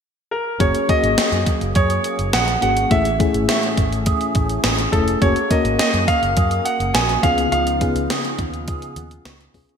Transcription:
0.31 grand piano A#4
0.59 fingered electric bass F#1, clean electric guitar F#3, analog synth pad F#3 A#3 G#4, fm electric piano A#3 C#4 F#4 G#4, grand piano C#5, kick, closed hi-hat
0.75 closed hi-hat
0.88 fm electric piano A#3 C#4 F#4 G#4, clean electric guitar A#3, grand piano D#5, kick, closed hi-hat
1.03 fingered electric bass G#1, closed hi-hat
1.18 clean electric guitar G#4, muted fingered electric bass stroke, snare, closed hi-hat
1.32 fingered electric bass F#2, closed hi-hat
1.46 clean electric guitar A#3, kick, closed hi-hat
1.61 fingered electric bass F#1, closed hi-hat
1.75 fingered electric bass F#2, clean electric guitar G#4, grand piano C#5, kick, closed hi-hat
1.90 closed hi-hat
2.04 clean electric guitar A#3, closed hi-hat
2.19 fingered electric bass F#1, closed hi-hat
2.33 fingered electric bass A#1, clean electric guitar G#4, grand piano F#5, snare, closed hi-hat
2.48 closed hi-hat
2.61 fingered electric bass G#1, fm electric piano A#3 C#4 F#4 G#4, clean electric guitar C#4, grand piano F#5, closed hi-hat
2.77 closed hi-hat
2.90 fingered electric bass A1, fm electric piano A2 A3 C#4 E4 G#4, clean electric guitar E3, analog synth pad A3 C#4, grand piano E5, kick, closed hi-hat
3.05 closed hi-hat
3.19 fm electric piano A3 C#4 E4 G#4, clean electric guitar A3, kick, closed hi-hat
3.34 fingered electric bass G#1, closed hi-hat
3.48 clean electric guitar F#4, grand piano E5, snare, closed hi-hat
3.63 clean electric guitar G#4, closed hi-hat
3.77 fingered electric bass G#1, clean electric guitar A3, kick, closed hi-hat
3.93 closed hi-hat
4.06 clean electric guitar G#4, kick, closed hi-hat
4.21 closed hi-hat
4.35 fingered electric bass A1, clean electric guitar A3, kick, closed hi-hat
4.49 closed hi-hat
4.64 fingered electric bass A1, clean electric guitar G#4, snare, closed hi-hat
4.78 closed hi-hat
4.92 fingered electric bass F1, fm electric piano A3 C#4 E4 G#4, clean electric guitar C#4, grand piano A4, kick, closed hi-hat
5.08 closed hi-hat
5.21 fingered electric bass F#1, clean electric guitar A#3, fm electric piano A#3 C#4 F#4 G#4, analog synth pad A#3 F#4, grand piano C#5, kick, closed hi-hat
5.36 closed hi-hat
5.50 fm electric piano A#3 C#4 F#4 A#4, clean electric guitar A#3, grand piano D#5, kick, closed hi-hat
5.65 fingered electric bass G#1, closed hi-hat
5.79 clean electric guitar G#4, grand piano D#5, snare, closed hi-hat
5.94 fingered electric bass F#2, closed hi-hat
6.08 clean electric guitar A#3, grand piano F5, kick, closed hi-hat
6.23 fingered electric bass F#1, closed hi-hat
6.37 fingered electric bass F#2, clean electric guitar G#4, kick, closed hi-hat
6.51 closed hi-hat
6.65 clean electric guitar A#3, grand piano F#5, closed hi-hat
6.80 fingered electric bass F#1, closed hi-hat
6.94 fingered electric bass A#1, clean electric guitar G#4, grand piano G#5, snare, closed hi-hat
7.09 closed hi-hat
7.23 fingered electric bass C#2, fm electric piano C#3 B3 C#4 F4 G#4, analog synth pad C#3 B3 D#4 F4, clean electric guitar F3, grand piano F5, kick, closed hi-hat
7.38 closed hi-hat
7.52 fingered electric bass C#2, clean electric guitar F3, grand piano F5, closed hi-hat
7.67 closed hi-hat
7.80 fm electric piano B3 C#4 F4 G#4, clean electric guitar B3, kick, closed hi-hat
7.95 fingered electric bass C#2, closed hi-hat
8.10 clean electric guitar G#4, snare, closed hi-hat
8.25 closed hi-hat
8.39 fingered electric bass D#2, clean electric guitar B3, kick, closed hi-hat
8.54 closed hi-hat
8.68 clean electric guitar G#4, kick, closed hi-hat
8.82 closed hi-hat
8.96 fingered electric bass D#2, clean electric guitar B3, closed hi-hat
9.11 closed hi-hat
9.25 fingered electric bass C#2, clean electric guitar F#4, snare, closed hi-hat
9.40 clean electric guitar G#4, closed hi-hat
9.54 fingered electric bass C2, fm electric piano B3 C#4 F4 G#4, clean electric guitar C#4, kick, open hi-hat
9.69 closed hi-hat

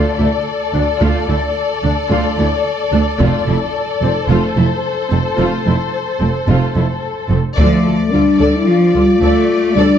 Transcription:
Already playing: viola section A3 F4, violin section A4 D5
0.19 double bass section D2, cello section D2, viola section A3 E4
0.74 cello section D2, double bass section D2, viola section A3 D4
1.00 double bass section D2, cello section D2, viola section A3 F4
1.28 cello section D2, double bass section D2, viola section A3 E4
1.83 double bass section D2, cello section D2, viola section A3 D4
2.10 double bass section D2, cello section D2, viola section A3 F4
2.37 cello section D2, double bass section D2, viola section A3 E4
2.92 double bass section D2, cello section D2, viola section A3 D4
3.19 double bass section F1, cello section F2, viola section A3 F4, violin section A4, taiko
3.47 double bass section F1, cello section F2, viola section A3 E4
4.02 double bass section F1, cello section F2, viola section A3 C4
4.29 double bass section F1, cello section F2, viola section A3 F4, violin section C5
4.56 double bass section F1, cello section F2, viola section A3 E4
5.11 double bass section F1, cello section F2, viola section A3 C4
5.38 double bass section F1, cello section F2, viola section A3 F4
5.66 double bass section F1, cello section F2, viola section A3 E4
6.20 double bass section F1, cello section F2, viola section A3 C4
6.48 double bass section F1, cello section F2, viola section A3 F4
6.76 double bass section F1, cello section F2, viola section A3 E4
7.30 double bass section F1, cello section F2, viola section A3 C4
7.57 double bass section D2, cello section F3, french horn section A3, viola section A4, violin section D5, taiko
7.85 double bass section D2, violin section A4, viola section A4
8.12 double bass section D2, cello section G3, french horn section D4, violin section F4, viola section A4
8.40 double bass section D2, viola section A4, violin section D5
8.55 french horn section E4
8.67 cello section F3, french horn section F4
8.94 double bass section D2, cello section G3, violin section F4, viola section A4
9.21 double bass section D2, cello section A3, viola section A4, violin section D5
9.76 double bass section D2, cello section G3, french horn section D4, viola section A4, violin section D5

